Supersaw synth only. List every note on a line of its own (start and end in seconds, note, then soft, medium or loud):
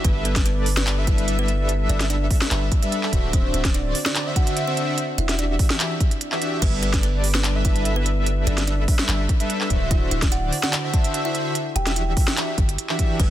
0.04 0.33 G3 medium
0.04 0.33 D4 medium
0.04 0.33 A4 medium
0.04 0.33 B4 medium
0.04 0.33 E5 medium
0.36 0.95 G3 medium
0.36 0.95 D4 medium
0.36 0.95 A4 medium
0.36 0.95 B4 medium
0.36 0.95 D5 medium
0.98 1.05 G3 medium
0.98 1.05 D4 medium
0.98 1.05 A4 medium
0.98 1.05 B4 medium
0.98 1.05 E5 medium
1.07 1.25 G3 loud
1.07 1.25 D4 medium
1.07 1.25 A4 medium
1.07 1.25 B4 medium
1.07 1.25 E5 loud
1.28 1.36 G3 medium
1.28 1.36 D4 medium
1.28 1.36 A4 medium
1.28 1.36 B4 medium
1.28 1.36 E5 loud
1.39 1.98 G3 medium
1.39 1.98 D4 medium
1.39 1.98 A4 medium
1.39 1.98 B4 medium
1.39 1.98 E5 loud
2.00 2.49 G3 medium
2.00 2.49 D4 medium
2.00 2.49 A4 medium
2.00 2.49 B4 medium
2.00 2.49 E5 medium
2.51 2.64 G3 medium
2.51 2.64 D4 medium
2.51 2.64 A4 medium
2.51 2.64 B4 medium
2.51 2.64 E5 loud
2.83 3.00 G3 medium
2.83 3.00 D4 medium
2.83 3.00 A4 medium
2.83 3.00 B4 medium
2.83 3.00 E5 loud
3.03 3.10 G3 medium
3.03 3.10 D4 medium
3.03 3.10 A4 medium
3.03 3.10 B4 medium
3.03 3.10 E5 loud
3.13 3.31 D3 medium
3.13 3.31 D4 medium
3.13 3.31 F#4 medium
3.13 3.31 C5 medium
3.13 3.31 E5 loud
3.33 3.62 D3 medium
3.33 3.62 D4 medium
3.33 3.62 F#4 medium
3.33 3.62 C5 medium
3.33 3.62 E5 medium
3.65 4.24 D3 medium
3.65 4.24 D4 medium
3.65 4.24 F#4 medium
3.65 4.24 C5 medium
3.65 4.24 D5 medium
4.26 4.34 D3 medium
4.26 4.34 D4 medium
4.26 4.34 F#4 medium
4.26 4.34 C5 medium
4.26 4.34 E5 medium
4.36 4.54 D3 loud
4.36 4.54 D4 medium
4.36 4.54 F#4 medium
4.36 4.54 C5 medium
4.36 4.54 E5 loud
4.57 4.65 D3 medium
4.57 4.65 D4 medium
4.57 4.65 F#4 medium
4.57 4.65 C5 medium
4.57 4.65 E5 medium
4.67 4.97 D3 medium
4.67 4.97 D4 medium
4.67 4.96 F#4 medium
4.67 4.97 C5 medium
4.67 4.97 E5 loud
5.29 5.78 E3 medium
5.29 5.78 D4 medium
5.29 5.78 F#4 medium
5.29 5.78 G4 medium
5.29 5.78 E5 medium
5.80 5.93 E3 medium
5.80 5.93 D4 medium
5.80 5.93 F#4 medium
5.80 5.93 G4 medium
5.80 5.93 E5 loud
6.32 6.39 E3 medium
6.32 6.39 D4 medium
6.32 6.39 F#4 medium
6.32 6.39 G4 medium
6.32 6.39 E5 medium
6.42 6.60 E3 medium
6.42 6.60 D4 medium
6.42 6.60 F#4 medium
6.42 6.60 G4 medium
6.42 6.60 E5 medium
6.62 6.91 G3 medium
6.62 6.91 D4 medium
6.62 6.91 A4 medium
6.62 6.91 B4 medium
6.62 6.91 E5 medium
6.93 7.53 G3 medium
6.93 7.52 D4 medium
6.93 7.53 A4 medium
6.93 7.53 B4 medium
6.93 7.53 D5 medium
7.55 7.62 G3 medium
7.55 7.62 D4 medium
7.55 7.62 A4 medium
7.55 7.62 B4 medium
7.55 7.62 E5 medium
7.65 7.83 G3 medium
7.65 7.83 D4 medium
7.65 7.83 A4 medium
7.65 7.83 B4 medium
7.65 7.83 E5 loud
7.85 7.94 G3 medium
7.85 7.94 D4 medium
7.85 7.94 A4 medium
7.85 7.94 B4 medium
7.85 7.94 E5 loud
7.96 8.55 G3 medium
7.96 8.55 D4 medium
7.96 8.55 A4 medium
7.96 8.55 B4 medium
7.96 8.55 E5 loud
8.58 9.06 G3 medium
8.58 9.06 D4 medium
8.58 9.06 A4 medium
8.58 9.06 B4 medium
8.58 9.06 E5 medium
9.09 9.21 G3 medium
9.09 9.21 D4 medium
9.09 9.21 A4 medium
9.09 9.21 B4 medium
9.09 9.21 E5 loud
9.40 9.58 G3 loud
9.40 9.58 D4 medium
9.40 9.58 A4 medium
9.40 9.58 B4 medium
9.40 9.58 E5 loud
9.61 9.68 G3 medium
9.61 9.68 D4 medium
9.61 9.68 A4 medium
9.61 9.68 B4 medium
9.61 9.68 E5 medium
9.70 9.88 D3 medium
9.70 9.88 D4 medium
9.70 9.88 F#4 medium
9.70 9.88 C5 medium
9.70 9.88 E5 loud
9.91 10.20 D3 medium
9.91 10.20 D4 medium
9.91 10.20 F#4 medium
9.91 10.20 C5 medium
9.91 10.20 E5 medium
10.22 10.81 D3 medium
10.22 10.81 D4 medium
10.22 10.81 F#4 medium
10.22 10.81 C5 medium
10.22 10.81 D5 medium
10.84 10.91 D3 medium
10.84 10.91 D4 medium
10.84 10.91 F#4 medium
10.84 10.91 C5 medium
10.84 10.91 E5 medium
10.94 11.12 D3 medium
10.94 11.12 D4 medium
10.94 11.12 F#4 medium
10.94 11.12 C5 medium
10.94 11.12 E5 loud
11.14 11.22 D3 medium
11.14 11.22 D4 medium
11.14 11.22 F#4 medium
11.14 11.22 C5 medium
11.14 11.22 E5 loud
11.25 11.54 D3 medium
11.25 11.54 D4 medium
11.25 11.54 F#4 medium
11.25 11.54 C5 medium
11.25 11.54 E5 loud
11.87 12.35 E3 medium
11.87 12.35 D4 medium
11.87 12.35 F#4 medium
11.87 12.35 G4 medium
11.87 12.35 E5 medium
12.37 12.50 E3 medium
12.37 12.50 D4 medium
12.37 12.50 F#4 medium
12.37 12.50 G4 medium
12.37 12.50 E5 loud
12.89 12.97 E3 medium
12.89 12.97 D4 medium
12.89 12.97 F#4 medium
12.89 12.97 G4 medium
12.89 12.97 E5 medium
12.99 13.17 E3 medium
12.99 13.17 D4 medium
12.99 13.17 F#4 medium
12.99 13.17 G4 medium
12.99 13.17 E5 loud
13.20 13.30 G3 medium
13.20 13.30 D4 medium
13.20 13.30 A4 medium
13.20 13.30 B4 medium
13.20 13.30 E5 medium